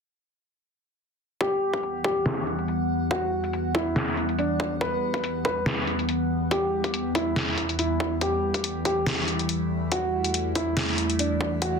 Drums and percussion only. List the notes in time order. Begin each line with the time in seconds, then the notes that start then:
1.41 kick
1.74 kick, closed hi-hat
1.83 closed hi-hat
2.04 kick
2.26 snare, closed hi-hat
2.47 closed hi-hat
2.59 closed hi-hat
2.68 closed hi-hat
3.11 kick, closed hi-hat
3.44 closed hi-hat
3.53 closed hi-hat
3.75 kick, closed hi-hat
3.96 snare, closed hi-hat
4.17 closed hi-hat
4.29 closed hi-hat
4.39 closed hi-hat
4.60 kick
4.81 kick, closed hi-hat
5.14 kick, closed hi-hat
5.24 closed hi-hat
5.45 kick, closed hi-hat
5.66 snare, closed hi-hat
5.87 closed hi-hat
5.99 closed hi-hat
6.09 closed hi-hat
6.51 kick, closed hi-hat
6.84 kick, closed hi-hat
6.94 closed hi-hat
7.15 kick, closed hi-hat
7.36 snare, closed hi-hat
7.58 kick, closed hi-hat
7.69 closed hi-hat
7.79 closed hi-hat
8.00 kick
8.21 kick, closed hi-hat
8.54 kick, closed hi-hat
8.64 closed hi-hat
8.85 kick, closed hi-hat
9.06 snare, closed hi-hat
9.28 closed hi-hat
9.39 closed hi-hat
9.49 closed hi-hat
9.92 kick, closed hi-hat
10.24 closed hi-hat
10.34 closed hi-hat
10.55 kick, closed hi-hat
10.77 snare, closed hi-hat
10.98 closed hi-hat
11.10 closed hi-hat
11.19 closed hi-hat
11.41 kick
11.62 kick, closed hi-hat